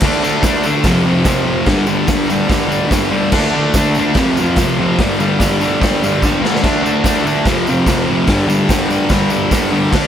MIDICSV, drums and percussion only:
0, 0, Header, 1, 2, 480
1, 0, Start_track
1, 0, Tempo, 412371
1, 41, Time_signature, 4, 2, 24, 8
1, 11721, End_track
2, 0, Start_track
2, 0, Title_t, "Drums"
2, 5, Note_on_c, 9, 49, 127
2, 21, Note_on_c, 9, 36, 124
2, 21, Note_on_c, 9, 38, 111
2, 46, Note_on_c, 9, 54, 29
2, 121, Note_off_c, 9, 49, 0
2, 138, Note_off_c, 9, 36, 0
2, 138, Note_off_c, 9, 38, 0
2, 162, Note_off_c, 9, 54, 0
2, 282, Note_on_c, 9, 54, 80
2, 399, Note_off_c, 9, 54, 0
2, 494, Note_on_c, 9, 46, 63
2, 500, Note_on_c, 9, 36, 117
2, 508, Note_on_c, 9, 54, 107
2, 510, Note_on_c, 9, 38, 107
2, 610, Note_off_c, 9, 46, 0
2, 616, Note_off_c, 9, 36, 0
2, 624, Note_off_c, 9, 54, 0
2, 627, Note_off_c, 9, 38, 0
2, 738, Note_on_c, 9, 54, 79
2, 855, Note_off_c, 9, 54, 0
2, 971, Note_on_c, 9, 46, 68
2, 979, Note_on_c, 9, 36, 127
2, 980, Note_on_c, 9, 54, 82
2, 988, Note_on_c, 9, 38, 114
2, 1088, Note_off_c, 9, 46, 0
2, 1095, Note_off_c, 9, 36, 0
2, 1096, Note_off_c, 9, 54, 0
2, 1104, Note_off_c, 9, 38, 0
2, 1445, Note_on_c, 9, 46, 62
2, 1457, Note_on_c, 9, 36, 116
2, 1459, Note_on_c, 9, 54, 101
2, 1461, Note_on_c, 9, 38, 116
2, 1561, Note_off_c, 9, 46, 0
2, 1573, Note_off_c, 9, 36, 0
2, 1576, Note_off_c, 9, 54, 0
2, 1578, Note_off_c, 9, 38, 0
2, 1933, Note_on_c, 9, 46, 73
2, 1939, Note_on_c, 9, 36, 119
2, 1939, Note_on_c, 9, 54, 32
2, 1949, Note_on_c, 9, 38, 119
2, 2049, Note_off_c, 9, 46, 0
2, 2055, Note_off_c, 9, 54, 0
2, 2056, Note_off_c, 9, 36, 0
2, 2066, Note_off_c, 9, 38, 0
2, 2174, Note_on_c, 9, 54, 80
2, 2290, Note_off_c, 9, 54, 0
2, 2412, Note_on_c, 9, 46, 70
2, 2421, Note_on_c, 9, 54, 106
2, 2422, Note_on_c, 9, 36, 121
2, 2428, Note_on_c, 9, 38, 119
2, 2528, Note_off_c, 9, 46, 0
2, 2538, Note_off_c, 9, 36, 0
2, 2538, Note_off_c, 9, 54, 0
2, 2544, Note_off_c, 9, 38, 0
2, 2677, Note_on_c, 9, 54, 76
2, 2793, Note_off_c, 9, 54, 0
2, 2905, Note_on_c, 9, 36, 127
2, 2905, Note_on_c, 9, 46, 75
2, 2922, Note_on_c, 9, 38, 125
2, 2930, Note_on_c, 9, 54, 82
2, 3021, Note_off_c, 9, 36, 0
2, 3022, Note_off_c, 9, 46, 0
2, 3038, Note_off_c, 9, 38, 0
2, 3046, Note_off_c, 9, 54, 0
2, 3162, Note_on_c, 9, 54, 78
2, 3279, Note_off_c, 9, 54, 0
2, 3383, Note_on_c, 9, 46, 71
2, 3388, Note_on_c, 9, 36, 116
2, 3399, Note_on_c, 9, 38, 113
2, 3399, Note_on_c, 9, 54, 98
2, 3499, Note_off_c, 9, 46, 0
2, 3504, Note_off_c, 9, 36, 0
2, 3516, Note_off_c, 9, 38, 0
2, 3516, Note_off_c, 9, 54, 0
2, 3863, Note_on_c, 9, 57, 112
2, 3868, Note_on_c, 9, 36, 115
2, 3879, Note_on_c, 9, 38, 110
2, 3885, Note_on_c, 9, 54, 27
2, 3979, Note_off_c, 9, 57, 0
2, 3984, Note_off_c, 9, 36, 0
2, 3996, Note_off_c, 9, 38, 0
2, 4002, Note_off_c, 9, 54, 0
2, 4347, Note_on_c, 9, 46, 61
2, 4351, Note_on_c, 9, 54, 106
2, 4353, Note_on_c, 9, 36, 116
2, 4364, Note_on_c, 9, 38, 106
2, 4464, Note_off_c, 9, 46, 0
2, 4468, Note_off_c, 9, 54, 0
2, 4470, Note_off_c, 9, 36, 0
2, 4480, Note_off_c, 9, 38, 0
2, 4594, Note_on_c, 9, 54, 74
2, 4710, Note_off_c, 9, 54, 0
2, 4820, Note_on_c, 9, 46, 64
2, 4832, Note_on_c, 9, 36, 119
2, 4837, Note_on_c, 9, 38, 124
2, 4854, Note_on_c, 9, 54, 80
2, 4937, Note_off_c, 9, 46, 0
2, 4949, Note_off_c, 9, 36, 0
2, 4953, Note_off_c, 9, 38, 0
2, 4971, Note_off_c, 9, 54, 0
2, 5086, Note_on_c, 9, 54, 78
2, 5202, Note_off_c, 9, 54, 0
2, 5306, Note_on_c, 9, 46, 59
2, 5317, Note_on_c, 9, 36, 124
2, 5323, Note_on_c, 9, 38, 119
2, 5328, Note_on_c, 9, 54, 97
2, 5423, Note_off_c, 9, 46, 0
2, 5433, Note_off_c, 9, 36, 0
2, 5439, Note_off_c, 9, 38, 0
2, 5445, Note_off_c, 9, 54, 0
2, 5805, Note_on_c, 9, 36, 115
2, 5806, Note_on_c, 9, 46, 69
2, 5817, Note_on_c, 9, 54, 32
2, 5822, Note_on_c, 9, 38, 111
2, 5922, Note_off_c, 9, 36, 0
2, 5922, Note_off_c, 9, 46, 0
2, 5933, Note_off_c, 9, 54, 0
2, 5938, Note_off_c, 9, 38, 0
2, 6055, Note_on_c, 9, 54, 81
2, 6171, Note_off_c, 9, 54, 0
2, 6282, Note_on_c, 9, 46, 68
2, 6286, Note_on_c, 9, 36, 111
2, 6298, Note_on_c, 9, 38, 116
2, 6301, Note_on_c, 9, 54, 116
2, 6398, Note_off_c, 9, 46, 0
2, 6402, Note_off_c, 9, 36, 0
2, 6415, Note_off_c, 9, 38, 0
2, 6417, Note_off_c, 9, 54, 0
2, 6532, Note_on_c, 9, 54, 75
2, 6648, Note_off_c, 9, 54, 0
2, 6769, Note_on_c, 9, 36, 115
2, 6780, Note_on_c, 9, 46, 72
2, 6787, Note_on_c, 9, 54, 81
2, 6796, Note_on_c, 9, 38, 123
2, 6886, Note_off_c, 9, 36, 0
2, 6896, Note_off_c, 9, 46, 0
2, 6903, Note_off_c, 9, 54, 0
2, 6913, Note_off_c, 9, 38, 0
2, 7026, Note_on_c, 9, 54, 80
2, 7142, Note_off_c, 9, 54, 0
2, 7246, Note_on_c, 9, 36, 111
2, 7254, Note_on_c, 9, 54, 93
2, 7272, Note_on_c, 9, 38, 65
2, 7362, Note_off_c, 9, 36, 0
2, 7370, Note_off_c, 9, 54, 0
2, 7389, Note_off_c, 9, 38, 0
2, 7502, Note_on_c, 9, 54, 31
2, 7510, Note_on_c, 9, 38, 96
2, 7619, Note_off_c, 9, 54, 0
2, 7627, Note_off_c, 9, 38, 0
2, 7628, Note_on_c, 9, 38, 92
2, 7726, Note_on_c, 9, 36, 118
2, 7728, Note_on_c, 9, 49, 98
2, 7744, Note_off_c, 9, 38, 0
2, 7744, Note_on_c, 9, 38, 118
2, 7748, Note_on_c, 9, 54, 34
2, 7843, Note_off_c, 9, 36, 0
2, 7845, Note_off_c, 9, 49, 0
2, 7861, Note_off_c, 9, 38, 0
2, 7865, Note_off_c, 9, 54, 0
2, 7983, Note_on_c, 9, 54, 76
2, 8099, Note_off_c, 9, 54, 0
2, 8197, Note_on_c, 9, 46, 63
2, 8198, Note_on_c, 9, 36, 111
2, 8213, Note_on_c, 9, 38, 105
2, 8213, Note_on_c, 9, 54, 115
2, 8314, Note_off_c, 9, 36, 0
2, 8314, Note_off_c, 9, 46, 0
2, 8329, Note_off_c, 9, 54, 0
2, 8330, Note_off_c, 9, 38, 0
2, 8461, Note_on_c, 9, 54, 77
2, 8577, Note_off_c, 9, 54, 0
2, 8676, Note_on_c, 9, 46, 63
2, 8678, Note_on_c, 9, 36, 119
2, 8692, Note_on_c, 9, 38, 123
2, 8693, Note_on_c, 9, 54, 83
2, 8793, Note_off_c, 9, 46, 0
2, 8795, Note_off_c, 9, 36, 0
2, 8809, Note_off_c, 9, 38, 0
2, 8809, Note_off_c, 9, 54, 0
2, 8927, Note_on_c, 9, 54, 73
2, 9043, Note_off_c, 9, 54, 0
2, 9155, Note_on_c, 9, 36, 117
2, 9155, Note_on_c, 9, 46, 61
2, 9161, Note_on_c, 9, 54, 105
2, 9171, Note_on_c, 9, 38, 110
2, 9271, Note_off_c, 9, 36, 0
2, 9271, Note_off_c, 9, 46, 0
2, 9277, Note_off_c, 9, 54, 0
2, 9288, Note_off_c, 9, 38, 0
2, 9628, Note_on_c, 9, 46, 66
2, 9635, Note_on_c, 9, 36, 117
2, 9644, Note_on_c, 9, 38, 112
2, 9650, Note_on_c, 9, 54, 30
2, 9744, Note_off_c, 9, 46, 0
2, 9751, Note_off_c, 9, 36, 0
2, 9761, Note_off_c, 9, 38, 0
2, 9767, Note_off_c, 9, 54, 0
2, 9889, Note_on_c, 9, 54, 83
2, 10006, Note_off_c, 9, 54, 0
2, 10115, Note_on_c, 9, 46, 68
2, 10118, Note_on_c, 9, 36, 112
2, 10131, Note_on_c, 9, 38, 114
2, 10131, Note_on_c, 9, 54, 100
2, 10231, Note_off_c, 9, 46, 0
2, 10234, Note_off_c, 9, 36, 0
2, 10247, Note_off_c, 9, 38, 0
2, 10247, Note_off_c, 9, 54, 0
2, 10363, Note_on_c, 9, 54, 73
2, 10480, Note_off_c, 9, 54, 0
2, 10582, Note_on_c, 9, 54, 79
2, 10590, Note_on_c, 9, 46, 77
2, 10593, Note_on_c, 9, 36, 123
2, 10606, Note_on_c, 9, 38, 118
2, 10698, Note_off_c, 9, 54, 0
2, 10707, Note_off_c, 9, 46, 0
2, 10709, Note_off_c, 9, 36, 0
2, 10723, Note_off_c, 9, 38, 0
2, 10825, Note_on_c, 9, 54, 78
2, 10941, Note_off_c, 9, 54, 0
2, 11073, Note_on_c, 9, 46, 70
2, 11074, Note_on_c, 9, 36, 117
2, 11077, Note_on_c, 9, 54, 96
2, 11089, Note_on_c, 9, 38, 120
2, 11189, Note_off_c, 9, 46, 0
2, 11190, Note_off_c, 9, 36, 0
2, 11194, Note_off_c, 9, 54, 0
2, 11206, Note_off_c, 9, 38, 0
2, 11555, Note_on_c, 9, 36, 113
2, 11561, Note_on_c, 9, 49, 103
2, 11563, Note_on_c, 9, 54, 30
2, 11577, Note_on_c, 9, 38, 124
2, 11671, Note_off_c, 9, 36, 0
2, 11677, Note_off_c, 9, 49, 0
2, 11679, Note_off_c, 9, 54, 0
2, 11694, Note_off_c, 9, 38, 0
2, 11721, End_track
0, 0, End_of_file